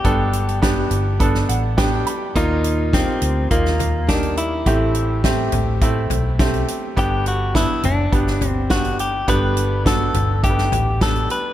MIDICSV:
0, 0, Header, 1, 5, 480
1, 0, Start_track
1, 0, Key_signature, 1, "major"
1, 0, Tempo, 576923
1, 40, Time_signature, 4, 2, 24, 8
1, 9595, End_track
2, 0, Start_track
2, 0, Title_t, "Clean electric guitar"
2, 0, Program_c, 0, 27
2, 0, Note_on_c, 0, 67, 70
2, 491, Note_off_c, 0, 67, 0
2, 1970, Note_on_c, 0, 63, 78
2, 2448, Note_on_c, 0, 60, 70
2, 2460, Note_off_c, 0, 63, 0
2, 2891, Note_off_c, 0, 60, 0
2, 2922, Note_on_c, 0, 58, 76
2, 3402, Note_on_c, 0, 62, 76
2, 3416, Note_off_c, 0, 58, 0
2, 3625, Note_off_c, 0, 62, 0
2, 3642, Note_on_c, 0, 64, 83
2, 4329, Note_off_c, 0, 64, 0
2, 5816, Note_on_c, 0, 67, 80
2, 6033, Note_off_c, 0, 67, 0
2, 6056, Note_on_c, 0, 66, 74
2, 6289, Note_off_c, 0, 66, 0
2, 6293, Note_on_c, 0, 64, 75
2, 6511, Note_off_c, 0, 64, 0
2, 6531, Note_on_c, 0, 62, 81
2, 7064, Note_off_c, 0, 62, 0
2, 7064, Note_on_c, 0, 60, 81
2, 7247, Note_on_c, 0, 66, 74
2, 7269, Note_off_c, 0, 60, 0
2, 7487, Note_off_c, 0, 66, 0
2, 7490, Note_on_c, 0, 67, 73
2, 7710, Note_off_c, 0, 67, 0
2, 7734, Note_on_c, 0, 71, 93
2, 8176, Note_off_c, 0, 71, 0
2, 8213, Note_on_c, 0, 69, 80
2, 8685, Note_off_c, 0, 69, 0
2, 8688, Note_on_c, 0, 67, 76
2, 9169, Note_off_c, 0, 67, 0
2, 9173, Note_on_c, 0, 69, 81
2, 9410, Note_off_c, 0, 69, 0
2, 9414, Note_on_c, 0, 71, 80
2, 9595, Note_off_c, 0, 71, 0
2, 9595, End_track
3, 0, Start_track
3, 0, Title_t, "Upright piano"
3, 0, Program_c, 1, 0
3, 0, Control_c, 1, 64, 127
3, 0, Note_on_c, 1, 59, 59
3, 0, Note_on_c, 1, 62, 56
3, 0, Note_on_c, 1, 64, 61
3, 0, Note_on_c, 1, 66, 67
3, 0, Note_on_c, 1, 67, 66
3, 36, Note_off_c, 1, 59, 0
3, 36, Note_on_c, 1, 59, 76
3, 39, Note_on_c, 1, 50, 55
3, 40, Note_off_c, 1, 62, 0
3, 40, Note_on_c, 1, 43, 55
3, 40, Note_on_c, 1, 62, 76
3, 44, Note_on_c, 1, 69, 87
3, 395, Note_off_c, 1, 59, 0
3, 397, Note_off_c, 1, 62, 0
3, 399, Note_off_c, 1, 69, 0
3, 514, Note_on_c, 1, 59, 74
3, 517, Note_on_c, 1, 62, 66
3, 522, Note_off_c, 1, 67, 0
3, 522, Note_on_c, 1, 67, 83
3, 727, Note_off_c, 1, 43, 0
3, 727, Note_off_c, 1, 50, 0
3, 874, Note_off_c, 1, 59, 0
3, 876, Note_off_c, 1, 62, 0
3, 878, Note_off_c, 1, 67, 0
3, 994, Note_on_c, 1, 59, 74
3, 999, Note_on_c, 1, 62, 69
3, 1003, Note_on_c, 1, 69, 75
3, 1238, Note_on_c, 1, 78, 60
3, 1355, Note_off_c, 1, 59, 0
3, 1357, Note_off_c, 1, 62, 0
3, 1359, Note_off_c, 1, 69, 0
3, 1462, Note_off_c, 1, 78, 0
3, 1475, Note_on_c, 1, 59, 69
3, 1478, Note_on_c, 1, 79, 65
3, 1479, Note_on_c, 1, 62, 67
3, 1482, Note_on_c, 1, 67, 86
3, 1702, Note_off_c, 1, 79, 0
3, 1718, Note_on_c, 1, 83, 64
3, 1835, Note_off_c, 1, 59, 0
3, 1837, Note_off_c, 1, 62, 0
3, 1838, Note_off_c, 1, 67, 0
3, 1943, Note_off_c, 1, 83, 0
3, 1958, Note_on_c, 1, 58, 81
3, 1962, Note_on_c, 1, 46, 55
3, 1963, Note_on_c, 1, 63, 73
3, 1966, Note_on_c, 1, 65, 93
3, 1971, Control_c, 1, 64, 0
3, 1974, Note_off_c, 1, 66, 0
3, 1977, Note_off_c, 1, 64, 0
3, 2110, Control_c, 1, 64, 127
3, 2317, Note_off_c, 1, 58, 0
3, 2319, Note_off_c, 1, 63, 0
3, 2321, Note_off_c, 1, 65, 0
3, 2437, Note_on_c, 1, 58, 63
3, 2441, Note_on_c, 1, 63, 61
3, 2445, Note_on_c, 1, 67, 64
3, 2648, Note_off_c, 1, 46, 0
3, 2796, Note_off_c, 1, 58, 0
3, 2798, Note_off_c, 1, 63, 0
3, 2800, Note_off_c, 1, 67, 0
3, 2917, Note_on_c, 1, 58, 62
3, 2920, Note_on_c, 1, 63, 56
3, 2925, Note_on_c, 1, 65, 69
3, 3276, Note_off_c, 1, 58, 0
3, 3278, Note_off_c, 1, 63, 0
3, 3280, Note_off_c, 1, 65, 0
3, 3398, Note_on_c, 1, 58, 64
3, 3405, Note_on_c, 1, 63, 54
3, 3408, Note_on_c, 1, 67, 67
3, 3757, Note_off_c, 1, 58, 0
3, 3760, Note_off_c, 1, 63, 0
3, 3761, Note_off_c, 1, 67, 0
3, 3879, Note_on_c, 1, 57, 82
3, 3883, Note_on_c, 1, 45, 56
3, 3884, Note_on_c, 1, 52, 56
3, 3884, Note_on_c, 1, 60, 73
3, 3888, Note_on_c, 1, 67, 88
3, 3894, Control_c, 1, 64, 0
3, 4028, Control_c, 1, 64, 127
3, 4237, Note_off_c, 1, 57, 0
3, 4240, Note_off_c, 1, 60, 0
3, 4242, Note_off_c, 1, 67, 0
3, 4359, Note_on_c, 1, 57, 77
3, 4363, Note_on_c, 1, 60, 70
3, 4366, Note_on_c, 1, 67, 80
3, 4569, Note_off_c, 1, 45, 0
3, 4569, Note_off_c, 1, 52, 0
3, 4717, Note_off_c, 1, 57, 0
3, 4719, Note_off_c, 1, 60, 0
3, 4721, Note_off_c, 1, 67, 0
3, 4840, Note_on_c, 1, 57, 71
3, 4844, Note_on_c, 1, 60, 65
3, 4846, Note_on_c, 1, 64, 80
3, 5198, Note_off_c, 1, 57, 0
3, 5200, Note_off_c, 1, 60, 0
3, 5201, Note_off_c, 1, 64, 0
3, 5317, Note_on_c, 1, 57, 74
3, 5320, Note_on_c, 1, 60, 68
3, 5324, Note_on_c, 1, 67, 74
3, 5677, Note_off_c, 1, 57, 0
3, 5678, Note_off_c, 1, 60, 0
3, 5680, Note_off_c, 1, 67, 0
3, 5795, Note_on_c, 1, 59, 79
3, 5798, Note_on_c, 1, 50, 53
3, 5799, Note_on_c, 1, 43, 50
3, 5800, Note_on_c, 1, 62, 74
3, 5803, Note_on_c, 1, 67, 89
3, 5811, Control_c, 1, 64, 0
3, 5965, Control_c, 1, 64, 127
3, 6156, Note_off_c, 1, 59, 0
3, 6158, Note_off_c, 1, 62, 0
3, 6160, Note_off_c, 1, 67, 0
3, 6276, Note_on_c, 1, 59, 65
3, 6281, Note_on_c, 1, 62, 60
3, 6285, Note_on_c, 1, 64, 68
3, 6487, Note_off_c, 1, 50, 0
3, 6488, Note_off_c, 1, 43, 0
3, 6636, Note_off_c, 1, 59, 0
3, 6639, Note_off_c, 1, 62, 0
3, 6641, Note_off_c, 1, 64, 0
3, 6756, Note_on_c, 1, 59, 66
3, 6759, Note_on_c, 1, 62, 56
3, 6763, Note_on_c, 1, 67, 69
3, 7117, Note_off_c, 1, 59, 0
3, 7118, Note_off_c, 1, 62, 0
3, 7120, Note_off_c, 1, 67, 0
3, 7240, Note_on_c, 1, 59, 59
3, 7242, Note_on_c, 1, 62, 55
3, 7247, Note_on_c, 1, 67, 71
3, 7599, Note_off_c, 1, 59, 0
3, 7600, Note_off_c, 1, 62, 0
3, 7602, Note_off_c, 1, 67, 0
3, 7719, Note_on_c, 1, 59, 85
3, 7722, Note_on_c, 1, 50, 52
3, 7722, Note_on_c, 1, 62, 77
3, 7723, Note_on_c, 1, 43, 52
3, 7727, Note_on_c, 1, 67, 92
3, 8078, Note_off_c, 1, 59, 0
3, 8080, Note_off_c, 1, 62, 0
3, 8082, Note_off_c, 1, 67, 0
3, 8195, Note_on_c, 1, 59, 65
3, 8199, Note_on_c, 1, 62, 57
3, 8203, Note_on_c, 1, 66, 67
3, 8410, Note_off_c, 1, 50, 0
3, 8411, Note_off_c, 1, 43, 0
3, 8557, Note_off_c, 1, 59, 0
3, 8559, Note_off_c, 1, 62, 0
3, 8561, Note_off_c, 1, 66, 0
3, 8677, Note_on_c, 1, 57, 52
3, 8680, Note_on_c, 1, 62, 53
3, 8685, Note_on_c, 1, 67, 70
3, 8732, Note_on_c, 1, 59, 59
3, 8735, Note_off_c, 1, 57, 0
3, 9039, Note_off_c, 1, 62, 0
3, 9042, Note_off_c, 1, 67, 0
3, 9065, Note_off_c, 1, 59, 0
3, 9158, Note_on_c, 1, 59, 60
3, 9163, Note_on_c, 1, 62, 53
3, 9167, Note_on_c, 1, 67, 65
3, 9519, Note_off_c, 1, 59, 0
3, 9521, Note_off_c, 1, 62, 0
3, 9523, Note_off_c, 1, 67, 0
3, 9595, End_track
4, 0, Start_track
4, 0, Title_t, "Fingered electric bass"
4, 0, Program_c, 2, 33
4, 41, Note_on_c, 2, 31, 82
4, 727, Note_off_c, 2, 31, 0
4, 757, Note_on_c, 2, 31, 89
4, 1205, Note_off_c, 2, 31, 0
4, 1239, Note_on_c, 2, 33, 73
4, 1687, Note_off_c, 2, 33, 0
4, 1959, Note_on_c, 2, 39, 95
4, 2530, Note_off_c, 2, 39, 0
4, 2678, Note_on_c, 2, 38, 91
4, 2902, Note_off_c, 2, 38, 0
4, 2919, Note_on_c, 2, 39, 79
4, 3847, Note_off_c, 2, 39, 0
4, 3879, Note_on_c, 2, 33, 94
4, 4567, Note_off_c, 2, 33, 0
4, 4601, Note_on_c, 2, 33, 104
4, 5048, Note_off_c, 2, 33, 0
4, 5080, Note_on_c, 2, 35, 78
4, 5528, Note_off_c, 2, 35, 0
4, 5800, Note_on_c, 2, 31, 87
4, 6371, Note_off_c, 2, 31, 0
4, 6518, Note_on_c, 2, 30, 81
4, 6744, Note_off_c, 2, 30, 0
4, 6759, Note_on_c, 2, 31, 74
4, 7688, Note_off_c, 2, 31, 0
4, 7719, Note_on_c, 2, 31, 87
4, 8408, Note_off_c, 2, 31, 0
4, 8439, Note_on_c, 2, 31, 98
4, 8889, Note_off_c, 2, 31, 0
4, 8921, Note_on_c, 2, 33, 80
4, 9370, Note_off_c, 2, 33, 0
4, 9595, End_track
5, 0, Start_track
5, 0, Title_t, "Drums"
5, 38, Note_on_c, 9, 42, 74
5, 39, Note_on_c, 9, 36, 89
5, 121, Note_off_c, 9, 42, 0
5, 122, Note_off_c, 9, 36, 0
5, 276, Note_on_c, 9, 42, 54
5, 359, Note_off_c, 9, 42, 0
5, 404, Note_on_c, 9, 42, 37
5, 487, Note_off_c, 9, 42, 0
5, 521, Note_on_c, 9, 36, 98
5, 521, Note_on_c, 9, 38, 92
5, 525, Note_on_c, 9, 42, 84
5, 604, Note_off_c, 9, 36, 0
5, 605, Note_off_c, 9, 38, 0
5, 608, Note_off_c, 9, 42, 0
5, 754, Note_on_c, 9, 42, 66
5, 838, Note_off_c, 9, 42, 0
5, 998, Note_on_c, 9, 42, 71
5, 1000, Note_on_c, 9, 36, 99
5, 1081, Note_off_c, 9, 42, 0
5, 1083, Note_off_c, 9, 36, 0
5, 1120, Note_on_c, 9, 38, 35
5, 1203, Note_off_c, 9, 38, 0
5, 1241, Note_on_c, 9, 42, 65
5, 1324, Note_off_c, 9, 42, 0
5, 1480, Note_on_c, 9, 38, 104
5, 1481, Note_on_c, 9, 36, 105
5, 1481, Note_on_c, 9, 42, 82
5, 1563, Note_off_c, 9, 38, 0
5, 1564, Note_off_c, 9, 36, 0
5, 1564, Note_off_c, 9, 42, 0
5, 1718, Note_on_c, 9, 42, 56
5, 1802, Note_off_c, 9, 42, 0
5, 1960, Note_on_c, 9, 36, 84
5, 1960, Note_on_c, 9, 42, 71
5, 2043, Note_off_c, 9, 36, 0
5, 2044, Note_off_c, 9, 42, 0
5, 2197, Note_on_c, 9, 42, 57
5, 2281, Note_off_c, 9, 42, 0
5, 2441, Note_on_c, 9, 36, 96
5, 2442, Note_on_c, 9, 38, 90
5, 2445, Note_on_c, 9, 42, 82
5, 2524, Note_off_c, 9, 36, 0
5, 2525, Note_off_c, 9, 38, 0
5, 2528, Note_off_c, 9, 42, 0
5, 2675, Note_on_c, 9, 42, 69
5, 2758, Note_off_c, 9, 42, 0
5, 2919, Note_on_c, 9, 42, 76
5, 2920, Note_on_c, 9, 36, 102
5, 3002, Note_off_c, 9, 42, 0
5, 3003, Note_off_c, 9, 36, 0
5, 3040, Note_on_c, 9, 38, 37
5, 3123, Note_off_c, 9, 38, 0
5, 3158, Note_on_c, 9, 43, 62
5, 3161, Note_on_c, 9, 42, 71
5, 3241, Note_off_c, 9, 43, 0
5, 3244, Note_off_c, 9, 42, 0
5, 3400, Note_on_c, 9, 38, 103
5, 3400, Note_on_c, 9, 42, 79
5, 3401, Note_on_c, 9, 36, 96
5, 3483, Note_off_c, 9, 38, 0
5, 3484, Note_off_c, 9, 36, 0
5, 3484, Note_off_c, 9, 42, 0
5, 3517, Note_on_c, 9, 42, 37
5, 3600, Note_off_c, 9, 42, 0
5, 3638, Note_on_c, 9, 42, 61
5, 3721, Note_off_c, 9, 42, 0
5, 3879, Note_on_c, 9, 36, 83
5, 3879, Note_on_c, 9, 42, 77
5, 3962, Note_off_c, 9, 36, 0
5, 3962, Note_off_c, 9, 42, 0
5, 4115, Note_on_c, 9, 42, 57
5, 4198, Note_off_c, 9, 42, 0
5, 4359, Note_on_c, 9, 36, 92
5, 4360, Note_on_c, 9, 38, 98
5, 4363, Note_on_c, 9, 42, 88
5, 4443, Note_off_c, 9, 36, 0
5, 4443, Note_off_c, 9, 38, 0
5, 4447, Note_off_c, 9, 42, 0
5, 4592, Note_on_c, 9, 42, 64
5, 4598, Note_on_c, 9, 43, 62
5, 4676, Note_off_c, 9, 42, 0
5, 4681, Note_off_c, 9, 43, 0
5, 4837, Note_on_c, 9, 42, 72
5, 4839, Note_on_c, 9, 36, 102
5, 4920, Note_off_c, 9, 42, 0
5, 4922, Note_off_c, 9, 36, 0
5, 5076, Note_on_c, 9, 43, 58
5, 5079, Note_on_c, 9, 42, 65
5, 5159, Note_off_c, 9, 43, 0
5, 5163, Note_off_c, 9, 42, 0
5, 5320, Note_on_c, 9, 36, 97
5, 5320, Note_on_c, 9, 38, 98
5, 5321, Note_on_c, 9, 42, 76
5, 5403, Note_off_c, 9, 36, 0
5, 5403, Note_off_c, 9, 38, 0
5, 5404, Note_off_c, 9, 42, 0
5, 5439, Note_on_c, 9, 42, 37
5, 5522, Note_off_c, 9, 42, 0
5, 5560, Note_on_c, 9, 42, 60
5, 5643, Note_off_c, 9, 42, 0
5, 5800, Note_on_c, 9, 36, 90
5, 5802, Note_on_c, 9, 42, 75
5, 5883, Note_off_c, 9, 36, 0
5, 5885, Note_off_c, 9, 42, 0
5, 6039, Note_on_c, 9, 42, 55
5, 6123, Note_off_c, 9, 42, 0
5, 6281, Note_on_c, 9, 36, 95
5, 6284, Note_on_c, 9, 38, 99
5, 6287, Note_on_c, 9, 42, 79
5, 6365, Note_off_c, 9, 36, 0
5, 6367, Note_off_c, 9, 38, 0
5, 6370, Note_off_c, 9, 42, 0
5, 6517, Note_on_c, 9, 42, 63
5, 6523, Note_on_c, 9, 43, 54
5, 6601, Note_off_c, 9, 42, 0
5, 6607, Note_off_c, 9, 43, 0
5, 6760, Note_on_c, 9, 36, 99
5, 6761, Note_on_c, 9, 42, 75
5, 6844, Note_off_c, 9, 36, 0
5, 6844, Note_off_c, 9, 42, 0
5, 6881, Note_on_c, 9, 38, 34
5, 6965, Note_off_c, 9, 38, 0
5, 6999, Note_on_c, 9, 43, 61
5, 7002, Note_on_c, 9, 42, 64
5, 7082, Note_off_c, 9, 43, 0
5, 7085, Note_off_c, 9, 42, 0
5, 7240, Note_on_c, 9, 38, 99
5, 7240, Note_on_c, 9, 42, 80
5, 7241, Note_on_c, 9, 36, 94
5, 7323, Note_off_c, 9, 38, 0
5, 7324, Note_off_c, 9, 36, 0
5, 7324, Note_off_c, 9, 42, 0
5, 7359, Note_on_c, 9, 42, 37
5, 7442, Note_off_c, 9, 42, 0
5, 7481, Note_on_c, 9, 42, 57
5, 7564, Note_off_c, 9, 42, 0
5, 7720, Note_on_c, 9, 42, 81
5, 7721, Note_on_c, 9, 36, 83
5, 7803, Note_off_c, 9, 42, 0
5, 7804, Note_off_c, 9, 36, 0
5, 7959, Note_on_c, 9, 42, 54
5, 8043, Note_off_c, 9, 42, 0
5, 8203, Note_on_c, 9, 36, 100
5, 8205, Note_on_c, 9, 38, 101
5, 8208, Note_on_c, 9, 42, 92
5, 8286, Note_off_c, 9, 36, 0
5, 8288, Note_off_c, 9, 38, 0
5, 8291, Note_off_c, 9, 42, 0
5, 8439, Note_on_c, 9, 42, 67
5, 8445, Note_on_c, 9, 43, 58
5, 8522, Note_off_c, 9, 42, 0
5, 8528, Note_off_c, 9, 43, 0
5, 8682, Note_on_c, 9, 42, 71
5, 8683, Note_on_c, 9, 36, 92
5, 8766, Note_off_c, 9, 36, 0
5, 8766, Note_off_c, 9, 42, 0
5, 8804, Note_on_c, 9, 38, 35
5, 8888, Note_off_c, 9, 38, 0
5, 8921, Note_on_c, 9, 43, 61
5, 8924, Note_on_c, 9, 42, 70
5, 9004, Note_off_c, 9, 43, 0
5, 9007, Note_off_c, 9, 42, 0
5, 9163, Note_on_c, 9, 38, 105
5, 9164, Note_on_c, 9, 36, 101
5, 9164, Note_on_c, 9, 42, 75
5, 9247, Note_off_c, 9, 36, 0
5, 9247, Note_off_c, 9, 38, 0
5, 9247, Note_off_c, 9, 42, 0
5, 9280, Note_on_c, 9, 42, 35
5, 9364, Note_off_c, 9, 42, 0
5, 9402, Note_on_c, 9, 42, 57
5, 9485, Note_off_c, 9, 42, 0
5, 9595, End_track
0, 0, End_of_file